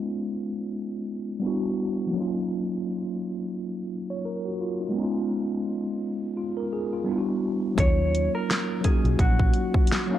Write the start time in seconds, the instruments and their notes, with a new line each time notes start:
Already playing: tine electric piano G#3 B3 C#4 D#4 F4
1.40 tine electric piano G3 B3 D4
1.45 tine electric piano E4 F#4
2.06 tine electric piano F3 A#3
2.13 tine electric piano F#3 C#4
2.17 tine electric piano D#4 F4
4.10 tine electric piano C#5
4.25 tine electric piano A#4
4.45 tine electric piano F#4
4.61 tine electric piano F4
4.81 tine electric piano D#4
4.89 tine electric piano G#3 B3
4.96 tine electric piano C#4 D#4
5.03 tine electric piano F4
6.37 tine electric piano F4
6.57 tine electric piano A#4
6.73 tine electric piano G#4
6.93 tine electric piano F4
7.04 tine electric piano G3 B3 D4
7.10 tine electric piano E4 F4
7.18 tine electric piano F#4
7.75 fingered electric bass D#2, tine electric piano F#3 A#3 C#4, kick, closed hi-hat
7.80 tine electric piano D#4 F4, clean electric guitar C#5
8.15 closed hi-hat
8.35 clean electric guitar A#4
8.51 snare, closed hi-hat
8.81 tine electric piano F#3 A#3 C#4, kick, closed hi-hat
8.85 tine electric piano D#4 F#4, clean electric guitar G#4
9.04 fingered electric bass B1, closed hi-hat
9.19 fingered electric bass A#1, clean electric guitar F#4, kick, closed hi-hat
9.39 kick
9.54 closed hi-hat
9.74 kick
9.87 closed hi-hat
9.92 snare
10.07 tine electric piano F#3 A#3 C#4
10.13 tine electric piano D#4 F5